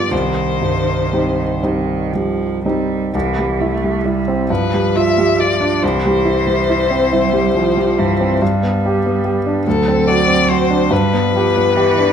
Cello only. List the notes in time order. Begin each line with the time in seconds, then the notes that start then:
0.12 D#3
1.61 D#3
2.13 F3
2.65 G3
3.15 E3
3.60 A3
4.05 G3
4.49 F3
5.84 E3
7.12 G3
7.55 F3
7.98 E3
8.41 G3
9.65 F#3
10.91 G3
11.32 F3
11.75 E3